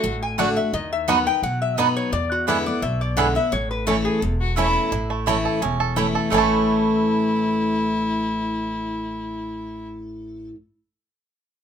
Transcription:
0.00 0.57 A1 medium
0.00 0.70 A2 medium
0.00 0.13 F#4 loud
0.23 0.38 G#5 medium
0.38 0.56 D3 medium
0.38 0.48 A3 medium
0.38 0.47 A3 medium
0.38 0.56 A3 loud
0.38 0.57 D4 medium
0.38 0.47 D4 medium
0.38 0.48 F#4 medium
0.38 0.47 F#4 medium
0.38 0.55 F#4 loud
0.38 0.48 D5 loud
0.38 0.57 F#5 medium
0.38 0.49 F#5 medium
0.56 0.73 D4 soft
0.56 0.73 F#4 medium
0.56 0.73 E5 medium
0.73 1.27 D#2 medium
0.73 1.40 D#3 medium
0.73 0.91 D#5 medium
0.93 1.08 E5 loud
1.08 1.26 F#3 medium
1.08 1.18 B3 medium
1.08 1.26 B3 loud
1.08 1.17 B3 medium
1.08 1.26 D#4 loud
1.08 1.17 D#4 medium
1.08 1.18 F#4 loud
1.08 1.17 F#4 medium
1.08 1.25 B4 medium
1.08 1.18 D#5 loud
1.08 1.26 F#5 medium
1.08 1.18 B5 loud
1.27 1.43 D#4 medium
1.27 1.43 B4 medium
1.27 1.43 G5 loud
1.43 1.97 B2 medium
1.43 1.77 F#3 medium
1.43 1.61 F#5 medium
1.62 1.78 E5 medium
1.77 2.11 F#3 loud
1.77 1.87 B3 medium
1.77 1.86 B3 medium
1.77 2.12 B3 medium
1.77 2.12 D#4 loud
1.77 1.86 D#4 medium
1.77 1.88 F#4 medium
1.77 1.87 F#4 medium
1.77 2.12 B4 medium
1.77 1.96 D#5 medium
1.77 1.88 D#5 loud
1.77 1.88 B5 medium
1.97 2.12 C#5 loud
2.12 2.66 E2 medium
2.12 2.79 E2 medium
2.12 2.31 D5 loud
2.32 2.48 F#4 medium
2.47 2.65 D3 medium
2.47 2.66 G#3 medium
2.47 2.56 B3 medium
2.47 2.66 B3 loud
2.47 2.57 D4 medium
2.47 2.56 D4 medium
2.47 2.56 E4 medium
2.47 2.65 E4 loud
2.47 2.57 G#4 medium
2.47 2.66 B4 medium
2.47 2.57 E5 medium
2.47 2.58 B5 medium
2.66 2.83 B3 medium
2.66 2.82 E4 medium
2.66 2.82 D5 medium
2.82 3.36 B1 medium
2.82 3.49 B2 medium
2.82 3.00 E5 medium
3.01 3.17 D5 medium
3.17 3.35 D3 loud
3.17 3.35 G#3 loud
3.17 3.35 B3 medium
3.17 3.26 B3 medium
3.17 3.27 D4 medium
3.17 3.26 D4 medium
3.17 3.34 E4 medium
3.17 3.26 E4 medium
3.17 3.27 G#4 medium
3.17 3.27 E5 medium
3.17 3.35 F#5 medium
3.17 3.27 B5 loud
3.35 3.52 B3 soft
3.35 3.51 E4 medium
3.35 3.52 E5 loud
3.52 4.06 A1 medium
3.52 4.19 A2 medium
3.52 3.70 C#5 medium
3.71 3.87 B4 medium
3.86 4.20 E3 medium
3.86 3.96 A3 medium
3.86 4.20 A3 medium
3.86 3.96 A3 medium
3.86 4.21 C#4 medium
3.86 3.96 C#4 medium
3.86 3.97 E4 medium
3.86 4.21 E4 loud
3.86 3.96 E4 medium
3.86 4.04 A4 medium
3.86 3.97 C#5 loud
3.86 3.97 A5 medium
4.05 4.22 G#4 medium
4.22 4.76 E1 medium
4.22 4.89 E2 medium
4.22 4.33 A4 medium
4.41 4.56 F#4 medium
4.56 4.90 E3 medium
4.56 4.66 A3 medium
4.56 4.91 A3 medium
4.56 4.65 A3 medium
4.56 4.91 C#4 loud
4.56 4.66 C#4 medium
4.56 4.66 E4 medium
4.56 4.90 E4 loud
4.56 4.66 E4 medium
4.56 4.91 E4 medium
4.56 4.67 C#5 medium
4.56 4.67 A5 medium
4.92 5.46 A1 medium
4.92 5.59 A2 medium
4.92 5.26 E4 medium
5.10 5.58 A3 medium
5.26 5.60 E3 medium
5.26 5.36 A3 medium
5.26 5.61 A3 loud
5.26 5.61 C#4 loud
5.26 5.36 E4 medium
5.26 5.77 E4 medium
5.26 5.61 E4 loud
5.26 5.36 C#5 loud
5.26 5.37 A5 loud
5.45 5.79 A4 medium
5.62 6.16 E1 medium
5.62 6.29 E2 medium
5.62 6.11 C#4 medium
5.80 6.14 A4 medium
5.96 6.30 E3 medium
5.96 6.06 A3 medium
5.96 6.30 A3 medium
5.96 6.30 C#4 medium
5.96 6.32 E4 medium
5.96 6.06 E4 medium
5.96 6.31 E4 medium
5.96 6.06 C#5 loud
5.96 6.07 A5 loud
6.15 6.32 A4 medium
6.30 10.50 A1 medium
6.30 10.54 A2 medium
6.30 10.54 E3 medium
6.30 10.52 A3 medium
6.30 10.50 A3 medium
6.30 10.55 A3 medium
6.30 10.55 C#4 medium
6.30 10.52 C#4 medium
6.30 9.87 E4 medium
6.30 10.54 E4 medium
6.30 10.56 E4 medium
6.30 10.50 A4 medium
6.30 10.55 C#5 loud
6.30 10.56 A5 loud
6.36 10.54 E4 medium
6.36 10.56 A4 medium

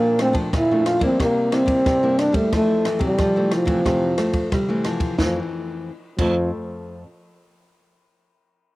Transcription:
0.00 0.29 A#2 medium
0.00 0.50 A#2 medium
0.00 0.14 F3 medium
0.00 0.14 A3 medium
0.00 0.19 A#3 medium
0.00 0.14 D4 medium
0.19 0.51 F3 medium
0.19 0.51 A3 medium
0.19 0.36 C4 medium
0.19 0.52 D4 medium
0.19 cross-stick medium
0.19 ride soft
0.33 0.49 F3 medium
0.33 kick medium
0.33 ride soft
0.53 1.17 F2 medium
0.53 0.96 A#2 medium
0.53 0.88 E4 medium
0.53 kick medium
0.53 cross-stick medium
0.53 ride soft
0.71 0.98 F3 medium
0.71 0.98 A3 medium
0.71 0.99 D4 medium
0.86 1.03 F4 medium
0.86 cross-stick medium
0.86 ride soft
0.99 1.15 F3 medium
0.99 1.47 G3 medium
0.99 1.47 A#3 medium
0.99 1.47 E4 medium
0.99 kick medium
0.99 ride soft
1.04 1.19 C4 medium
1.20 1.83 C3 medium
1.20 1.62 C3 medium
1.20 1.55 A#3 medium
1.20 kick medium
1.20 cross-stick medium
1.20 ride soft
1.52 1.97 G3 medium
1.52 1.97 A#3 medium
1.52 2.21 C4 medium
1.52 1.97 E4 medium
1.52 cross-stick medium
1.52 ride soft
1.66 1.81 C3 medium
1.66 kick medium
1.66 ride medium
1.86 2.49 G2 medium
1.86 2.29 C3 medium
1.86 kick medium
1.86 cross-stick medium
1.86 ride soft
2.03 2.47 G3 medium
2.03 2.48 A#3 medium
2.03 2.48 E4 medium
2.19 2.37 D4 medium
2.19 cross-stick medium
2.19 ride soft
2.32 2.48 G3 medium
2.32 2.52 A3 medium
2.32 kick medium
2.32 ride soft
2.53 3.16 F2 medium
2.53 2.73 E3 medium
2.53 2.95 F3 medium
2.53 2.73 A3 soft
2.53 3.00 A3 medium
2.53 2.73 C4 medium
2.53 kick medium
2.53 cross-stick medium
2.53 ride soft
2.85 3.30 E3 medium
2.85 3.30 A3 medium
2.85 3.30 C4 medium
2.85 cross-stick medium
2.85 ride soft
2.99 3.15 C3 medium
2.99 kick medium
2.99 ride soft
3.05 3.50 G3 medium
3.18 3.82 C3 medium
3.18 3.62 F3 medium
3.18 kick medium
3.18 cross-stick medium
3.18 ride soft
3.36 3.64 E3 medium
3.36 3.64 A3 medium
3.36 3.64 C4 medium
3.51 4.83 F3 medium
3.51 cross-stick medium
3.51 ride soft
3.65 3.81 C3 medium
3.65 3.79 E3 medium
3.65 3.80 A3 medium
3.65 3.80 C4 medium
3.65 kick medium
3.65 ride soft
3.85 4.49 F2 medium
3.85 4.14 C3 medium
3.85 4.05 E3 medium
3.85 4.05 A3 soft
3.85 4.05 C4 medium
3.85 kick medium
3.85 cross-stick medium
3.85 ride soft
4.18 4.63 A3 medium
4.18 4.49 A3 medium
4.18 4.64 C4 medium
4.18 cross-stick medium
4.18 ride soft
4.33 kick medium
4.33 ride soft
4.52 5.16 C3 medium
4.52 4.82 G3 medium
4.52 kick medium
4.52 cross-stick medium
4.52 ride soft
4.69 5.13 E3 medium
4.69 5.14 A3 medium
4.69 5.14 C4 medium
4.84 5.15 F3 medium
4.84 cross-stick medium
4.84 ride soft
5.00 kick medium
5.00 ride soft
5.18 5.89 F2 medium
5.18 5.37 F2 medium
5.18 5.89 E3 medium
5.18 5.38 F3 medium
5.18 5.89 A3 medium
5.18 5.89 C4 medium
5.18 kick medium
5.18 snare medium
6.19 6.50 F2 medium
6.19 7.03 F2 medium
6.19 6.50 F3 medium
6.19 7.03 A3 medium
6.19 7.03 C4 medium
6.19 kick medium
6.19 crash medium

